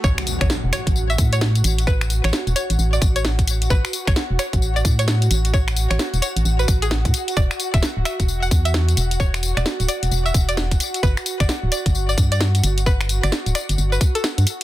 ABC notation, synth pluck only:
X:1
M:4/4
L:1/16
Q:"Swing 16ths" 1/4=131
K:A
V:1 name="Synth pluck"
c z2 c z2 c z2 e z c4 z | B z2 c z2 c z2 d z c4 z | B z2 c z2 c z2 d z c4 z | c z2 c z2 c z2 B z G4 z |
d z2 e z2 e z2 f z e4 z | c z2 d z2 d z2 e z d4 z | B z2 d z2 d z2 d z d4 z | B z2 d z2 d z2 B z A4 z |]